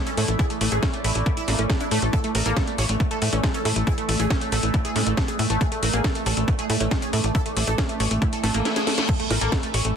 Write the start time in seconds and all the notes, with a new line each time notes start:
Already playing: E3 A3 E4 D5 D6
0.07 C#4 A4, closed hi-hat
0.17 A2 A3, open hi-hat
0.28 A1 A3, closed hi-hat
0.39 E4 G#4, kick, closed hi-hat
0.50 A3, closed hi-hat
0.61 A1 A3, open hi-hat
0.72 A1 A3 G#4, closed hi-hat
0.83 A3 C#4, kick, snare, closed hi-hat
0.94 A3, closed hi-hat
1.04 A1 A3 E4, open hi-hat
1.15 A1 A3, closed hi-hat
1.26 A3 E4, kick, closed hi-hat
1.37 E4, closed hi-hat
1.48 A1 A3 A#3, snare, open hi-hat
1.59 A1 A3 C#4, closed hi-hat
1.70 A3, kick, snare, closed hi-hat
1.80 D4 E4, closed hi-hat
1.91 A2 A3, open hi-hat
2.02 A1 A3 A4, closed hi-hat
2.13 A3 A4, kick, closed hi-hat
2.24 A3, closed hi-hat
2.35 A1 A3 A#4, open hi-hat
2.46 A1 A#3 A4, closed hi-hat
2.57 A3 A4, kick, snare, closed hi-hat
2.67 A3, closed hi-hat
2.78 A1 C#5, open hi-hat
2.85 E6
2.89 A1 A3, closed hi-hat
3.00 kick, closed hi-hat
3.11 A3 A4, closed hi-hat
3.22 A2 A3, open hi-hat
3.33 A1 A3 C#4, closed hi-hat
3.44 G#3 A3, kick, snare, closed hi-hat
3.54 C#4 A4, closed hi-hat
3.65 A2 A3, open hi-hat
3.76 A1 A3, closed hi-hat
3.87 E4 G#4, kick, closed hi-hat
3.98 A3, closed hi-hat
4.09 A1 A3, open hi-hat
4.20 A1 A3 G#4, closed hi-hat
4.30 A3 C#4, kick, snare, closed hi-hat
4.41 A3, closed hi-hat
4.52 A1 A3 A4, open hi-hat
4.63 A1 A3, closed hi-hat
4.74 A3 E4, kick, closed hi-hat
4.85 G#4, closed hi-hat
4.96 A2 G#3 A3, snare, open hi-hat
5.07 A1 A3, closed hi-hat
5.17 A3, kick, snare, closed hi-hat
5.28 G#4, closed hi-hat
5.39 A2 A3, open hi-hat
5.50 A1 A3, closed hi-hat
5.61 A3 G#4, kick, closed hi-hat
5.72 A3, closed hi-hat
5.83 A1 A3 A#4, open hi-hat
5.93 A1 A#3 G#4, closed hi-hat
6.04 A3 A4, kick, snare, closed hi-hat
6.15 A3, closed hi-hat
6.26 A1 A4, open hi-hat
6.32 D6
6.37 A1 A3, closed hi-hat
6.48 A3, kick, closed hi-hat
6.59 A3 G#4, closed hi-hat
6.70 A2 A3, open hi-hat
6.80 A1 A3 C#4, closed hi-hat
6.91 G#3 A3, kick, snare, closed hi-hat
7.02 C#4 G#4, closed hi-hat
7.13 A2 A3, open hi-hat
7.24 A1 A3, closed hi-hat
7.35 E4 A4, kick, closed hi-hat
7.46 A3, closed hi-hat
7.57 A1 A3, open hi-hat
7.67 A1 A3 A4, closed hi-hat
7.78 A3 C#4, kick, snare, closed hi-hat
7.89 A3, closed hi-hat
8.00 A1 A3 C#5, open hi-hat
8.11 A1 A3, closed hi-hat
8.22 A3 E4, kick, closed hi-hat, reverse cymbal
8.33 A4, closed hi-hat
8.44 A1 A3, snare, open hi-hat
8.54 A1 A3 A#3, closed hi-hat
8.65 A3 E4, snare, closed hi-hat
8.76 G#4, snare, closed hi-hat
8.87 A3, snare, open hi-hat
8.98 A3, snare, closed hi-hat
9.09 E3 A3 E4 A4, kick, closed hi-hat, crash, impact
9.20 A3, closed hi-hat
9.30 A1 A3 A#4, open hi-hat, high bongo
9.39 A1 A#3 A4 E5 E6, closed hi-hat
9.52 A3 A4, kick, snare, closed hi-hat
9.63 A3, closed hi-hat
9.74 A1 C#5, open hi-hat
9.85 A1 A3, closed hi-hat